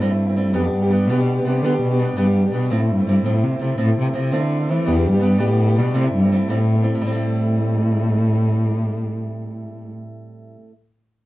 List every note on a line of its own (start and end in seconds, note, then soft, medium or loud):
0.00 0.57 G2 medium
0.00 0.11 A2 medium
0.00 0.11 G3 medium
0.00 0.10 A3 medium
0.00 0.11 C4 medium
0.00 0.10 E4 medium
0.11 0.27 A3 soft
0.11 0.28 C4 soft
0.11 0.26 E4 medium
0.27 0.37 A3 soft
0.27 0.36 C4 soft
0.27 0.36 E4 soft
0.36 0.52 G3 soft
0.36 0.55 A3 medium
0.36 0.54 C4 medium
0.36 0.55 E4 medium
0.53 0.74 F2 medium
0.53 0.64 G3 medium
0.53 0.64 B3 medium
0.53 0.64 D4 medium
0.53 0.63 G4 medium
0.64 0.84 B3 soft
0.64 0.83 D4 soft
0.64 0.81 G4 soft
0.75 1.10 G2 medium
0.82 0.91 B3 soft
0.82 0.92 D4 soft
0.82 0.91 G4 medium
0.90 1.07 G3 medium
0.90 1.08 B3 medium
0.90 1.09 D4 medium
0.90 1.10 G4 medium
1.08 1.45 B2 medium
1.08 1.18 G3 medium
1.08 1.19 B3 medium
1.08 1.19 D4 medium
1.08 1.17 G4 medium
1.18 1.38 B3 soft
1.18 1.37 D4 soft
1.18 1.34 G4 medium
1.35 1.45 B3 soft
1.35 1.46 D4 soft
1.35 1.45 G4 soft
1.45 1.64 C3 medium
1.45 1.62 G3 soft
1.45 1.63 B3 medium
1.45 1.63 D4 medium
1.45 1.64 G4 medium
1.62 1.81 D3 medium
1.62 1.73 G3 medium
1.62 1.73 B3 medium
1.62 1.73 D4 medium
1.62 1.72 G4 medium
1.73 1.92 B3 soft
1.73 1.91 D4 soft
1.73 1.89 G4 soft
1.82 2.14 B2 medium
1.91 1.99 B3 soft
1.91 2.00 D4 soft
1.91 1.99 G4 medium
1.99 2.15 G3 medium
1.99 2.16 B3 medium
1.99 2.16 D4 medium
1.99 2.17 G4 medium
2.16 2.51 G2 medium
2.16 2.26 G3 medium
2.16 2.27 B3 medium
2.16 2.27 D4 medium
2.16 2.25 G4 medium
2.26 2.46 B3 soft
2.26 2.45 D4 soft
2.26 2.43 G4 soft
2.45 2.52 B3 soft
2.45 2.53 D4 soft
2.45 2.53 G4 soft
2.52 2.72 B2 medium
2.52 2.70 G3 soft
2.52 2.70 B3 medium
2.52 2.71 D4 medium
2.52 2.71 G4 medium
2.70 2.92 A2 medium
2.70 2.80 F3 medium
2.70 2.80 A3 medium
2.70 2.80 C4 medium
2.70 2.78 E4 medium
2.80 2.99 A3 soft
2.80 3.00 C4 soft
2.80 2.98 E4 soft
2.91 3.06 G2 medium
2.99 3.08 A3 soft
2.99 3.07 C4 soft
2.99 3.07 E4 soft
3.07 3.23 G2 medium
3.07 3.23 F3 medium
3.07 3.24 A3 medium
3.07 3.24 C4 medium
3.07 3.25 E4 medium
3.24 3.45 A2 medium
3.24 3.34 F3 medium
3.24 3.34 A3 medium
3.24 3.34 C4 medium
3.24 3.32 E4 medium
3.33 3.53 A3 soft
3.33 3.54 C4 soft
3.33 3.51 E4 soft
3.44 3.61 C3 medium
3.53 3.60 A3 soft
3.53 3.60 C4 soft
3.53 3.61 E4 soft
3.59 3.77 C3 medium
3.59 3.76 F3 medium
3.59 3.78 A3 medium
3.59 3.77 C4 soft
3.59 3.78 E4 medium
3.78 3.97 A2 loud
3.78 3.88 F3 medium
3.78 3.88 A3 medium
3.78 3.88 C4 medium
3.78 3.85 E4 medium
3.87 4.06 A3 soft
3.87 4.07 C4 soft
3.87 4.04 E4 soft
3.99 4.14 C3 medium
4.05 4.14 A3 soft
4.05 4.14 C4 soft
4.05 4.14 E4 soft
4.13 4.34 C3 medium
4.13 4.30 F3 medium
4.13 4.32 A3 medium
4.13 4.32 C4 medium
4.13 4.32 E4 medium
4.32 4.72 D3 medium
4.32 4.42 F3 medium
4.32 4.41 A3 medium
4.32 4.42 C4 medium
4.32 4.39 E4 medium
4.40 4.60 A3 soft
4.40 4.61 C4 soft
4.40 4.59 E4 medium
4.60 4.70 A3 soft
4.60 4.69 C4 soft
4.60 4.69 E4 soft
4.68 4.90 E3 medium
4.68 4.85 F3 soft
4.68 4.87 A3 medium
4.68 4.86 C4 medium
4.68 4.87 E4 medium
4.85 5.09 E2 loud
4.85 4.95 G3 medium
4.85 4.96 B3 medium
4.85 4.95 D4 medium
4.85 4.94 G4 medium
4.95 5.15 B3 soft
4.95 5.13 D4 soft
4.95 5.11 G4 medium
5.07 5.43 G2 medium
5.12 5.20 B3 soft
5.12 5.20 D4 soft
5.12 5.22 G4 medium
5.19 5.37 G3 medium
5.19 5.38 B3 medium
5.19 5.38 D4 medium
5.19 5.39 G4 medium
5.38 5.80 A2 loud
5.38 5.49 G3 medium
5.38 5.49 B3 medium
5.38 5.49 D4 medium
5.38 5.46 G4 medium
5.47 5.68 B3 soft
5.47 5.68 D4 soft
5.47 5.66 G4 soft
5.68 5.76 B3 soft
5.68 5.77 D4 soft
5.68 5.76 G4 soft
5.76 5.96 B2 medium
5.76 5.93 G3 medium
5.76 5.94 B3 soft
5.76 5.94 D4 medium
5.76 5.95 G4 medium
5.94 6.04 A2 medium
5.94 6.13 C3 loud
5.94 6.04 G3 medium
5.94 6.04 A3 medium
5.94 6.04 C4 medium
5.94 6.03 E4 medium
6.04 6.23 A3 soft
6.04 6.23 C4 soft
6.04 6.21 E4 medium
6.14 6.45 G2 medium
6.22 6.31 A3 soft
6.22 6.31 C4 soft
6.22 6.30 E4 soft
6.32 6.48 G3 medium
6.32 6.49 A3 medium
6.32 6.48 C4 medium
6.32 6.49 E4 medium
6.48 6.58 A2 medium
6.48 6.98 A2 medium
6.48 6.58 G3 medium
6.48 6.57 A3 medium
6.48 6.58 C4 medium
6.48 6.55 E4 medium
6.57 6.75 A3 soft
6.57 6.77 C4 soft
6.57 6.73 E4 soft
6.75 6.83 A3 soft
6.75 6.82 C4 soft
6.75 6.84 E4 soft
6.82 7.00 G3 medium
6.82 7.01 A3 medium
6.82 7.01 C4 medium
6.82 7.02 E4 medium
6.95 10.55 A2 medium
7.01 9.92 A2 medium
7.01 10.62 G3 medium
7.07 10.67 C4 medium
7.12 10.71 A3 medium
7.16 10.74 E4 medium